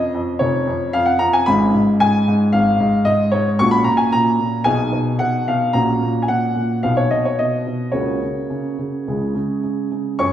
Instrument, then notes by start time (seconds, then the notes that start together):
grand piano
Already playing: F2 C#4 F4 D#5
0.14 F2
0.39 F1 F2 C#5
0.67 F2
0.93 F2 F5
1.06 F#5
1.19 F2 A#5
1.33 G#5
1.46 G#1 G#2 C#4 F4 B5
1.74 G#2
2.00 G#2 G#5
2.28 G#2
2.53 G#1 G#2 F5
2.80 G#2
3.05 G#2 D#5
3.32 G#2 C#5
3.59 A#1 A#2 C#4 F#4 C#6
3.71 B5
3.84 A#2 A#5
3.97 G#5
4.12 A#2 A#5
4.40 A#2
4.64 B1 B2 D#4 G#4 G#5
4.92 B2
5.19 B2 F#5
5.48 B2 F5
5.73 A#1 A#2 C#4 F#4 A#5
6.03 A#2
6.22 G#5
6.28 A#2 F#5
6.56 A#2
6.83 B1 B2 B3 F#4 F5
6.97 C#5
7.11 B2 D#5
7.25 C#5
7.39 B2 D#5
7.67 B2
7.92 C#2 C#3 A#3 F#4 C#5
8.23 C#3
8.50 C#3
8.79 C#3
9.08 C#2 C#3 G#3 G#4
9.34 C#3
9.63 C#3
9.92 C#3
10.19 F#2 C#5 C#6